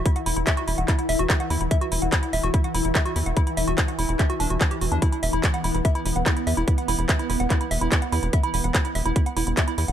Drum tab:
HH |xxoxxxoxxxoxxxox|xxoxxxoxxxoxxxox|xxoxxxoxxxoxxxox|xxoxxxoxxxoxxxox|
CP |----x---x---x---|----x-------x---|----x---x---x---|----x-------x---|
BD |o---o---o---o---|o---o---o---o---|o---o---o---o---|o---o---o---o---|

HH |xxoxxxoxxxoxxxox|xxoxxxoxxxoxxxox|
CP |----x---x---x---|----x-------x---|
BD |o---o---o---o---|o---o---o---o---|